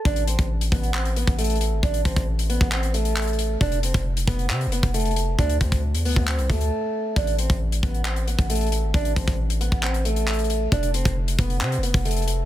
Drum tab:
HH |x-x-x-x---x-x-x-x-x-x-x-xxxxx---|x-x-x-x---x-x-x-x-x-x-x-xxxxx---|x-x-x-x---x-x-x-x-x-x-x-xxxxx---|x-x-x-x---x-o---x-x-x-x---------|
CP |----------------x---------------|----------------x-------x-------|----------------x---------------|----------------x---------------|
BD |o-----o-----o---------o---------|o---o-o-------o-----------------|o-----o-----o---------o---------|o---o-o-------o-----o-----------|

HH |x-x-x-x---x-x-x-x-x-x-x-xxxxx---|x-x-x-x---x-x-x-x-x-x-x-xxxxx---|x-x-x-x---x-x-x-x-x-x-x-xxxxx---|
CP |----------------x---------------|----------------x-------x-------|----------------x---------------|
BD |o-----o-----o---------o---------|o---o-o-------o-----------------|o-----o-----o---------o---------|